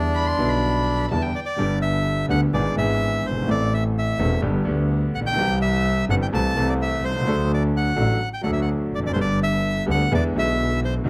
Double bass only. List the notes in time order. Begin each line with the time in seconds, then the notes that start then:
Already playing: E2
0.38 B1
1.10 E2
1.57 G1
2.29 D2
2.53 G#1
2.77 G#1
3.24 G1
3.47 A1
4.18 E1
4.42 G1
4.67 D2
5.15 A#1
5.38 C2
6.08 G1
6.32 C2
6.56 C2
7.02 C2
7.26 D2
7.97 A1
8.44 D2
8.91 F1
9.15 G1
9.86 D2
10.11 E2
10.33 B1
11.05 D#2